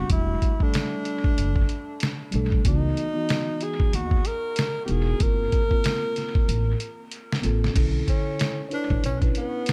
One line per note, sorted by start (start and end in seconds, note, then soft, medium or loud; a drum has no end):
0.00 0.11 F#4 medium
0.09 0.34 E1 loud
0.09 0.51 G3 medium
0.09 0.52 A3 medium
0.09 0.52 D4 medium
0.09 0.65 E4 medium
0.09 kick loud
0.09 closed hi-hat medium
0.13 0.53 F#4 medium
0.42 kick medium
0.42 closed hi-hat medium
0.59 1.65 G3 medium
0.59 1.66 A3 medium
0.59 1.66 D4 medium
0.59 1.67 A4 medium
0.59 kick medium
0.63 2.35 D4 medium
0.74 snare loud
0.74 closed hi-hat medium
1.05 closed hi-hat medium
1.24 kick medium
1.38 1.62 F#1 medium
1.38 closed hi-hat medium
1.56 kick medium
1.69 closed hi-hat medium
2.00 snare loud
2.00 closed hi-hat medium
2.32 2.58 B1 medium
2.32 2.60 G3 medium
2.32 2.61 A3 medium
2.32 2.61 D4 medium
2.32 closed hi-hat medium
2.36 2.62 A4 medium
2.52 kick medium
2.63 2.89 C#2 loud
2.63 3.07 E3 medium
2.63 3.06 B3 medium
2.63 3.06 D#4 medium
2.63 3.08 F#4 medium
2.63 kick loud
2.63 closed hi-hat medium
2.68 3.65 D#4 loud
2.97 closed hi-hat medium
3.14 4.21 E3 medium
3.14 4.20 B3 medium
3.14 4.21 D#4 medium
3.14 4.22 F#4 medium
3.29 snare loud
3.29 closed hi-hat medium
3.61 3.97 G#4 medium
3.61 closed hi-hat medium
3.80 kick medium
3.93 4.17 D#2 loud
3.93 4.28 F#4 medium
3.93 closed hi-hat medium
4.11 kick medium
4.25 4.84 A#4 loud
4.25 closed hi-hat medium
4.56 snare loud
4.56 closed hi-hat medium
4.86 5.13 E1 medium
4.86 5.15 B3 medium
4.86 5.16 D#4 medium
4.86 5.16 E4 medium
4.86 4.92 G4 medium
4.86 closed hi-hat medium
4.90 5.17 F#4 medium
4.90 5.24 G#4 medium
5.19 5.45 G1 medium
5.19 5.61 A#3 medium
5.19 5.62 C4 medium
5.19 5.62 F4 medium
5.19 5.63 A#4 medium
5.19 kick loud
5.19 closed hi-hat medium
5.23 7.13 A#4 loud
5.52 kick medium
5.52 closed hi-hat medium
5.68 6.75 A#3 medium
5.68 6.76 C4 medium
5.68 6.76 F4 medium
5.68 kick medium
5.73 6.77 A#4 medium
5.84 snare loud
5.84 closed hi-hat medium
6.16 snare soft
6.16 closed hi-hat medium
6.35 kick loud
6.48 6.73 A1 medium
6.48 closed hi-hat medium
6.80 closed hi-hat medium
7.12 closed hi-hat medium
7.32 snare medium
7.41 7.68 A1 medium
7.41 7.70 A#3 medium
7.41 7.71 C4 medium
7.41 7.72 F4 medium
7.41 closed hi-hat medium
7.46 7.72 A4 medium
7.64 snare medium
7.74 8.00 B1 medium
7.74 8.58 D3 medium
7.74 8.58 C#4 medium
7.74 8.59 E4 medium
7.74 kick loud
7.74 closed hi-hat medium
7.74 crash medium
7.78 8.60 A4 medium
8.08 8.68 C#4 medium
8.08 kick medium
8.08 closed hi-hat medium
8.39 snare loud
8.39 closed hi-hat medium
8.69 9.13 D4 medium
8.69 9.13 E4 medium
8.69 9.12 C#5 medium
8.69 closed hi-hat medium
8.73 9.02 D4 loud
8.73 9.14 B4 medium
8.90 9.00 A1 medium
8.90 kick medium
9.04 9.28 B1 medium
9.04 9.19 C#4 medium
9.04 closed hi-hat medium
9.20 9.73 C#4 medium
9.20 9.73 D4 medium
9.20 9.73 E4 medium
9.20 kick medium
9.20 closed hi-hat soft
9.24 9.73 B4 medium
9.35 9.73 B3 loud
9.35 closed hi-hat medium
9.66 snare loud
9.66 closed hi-hat medium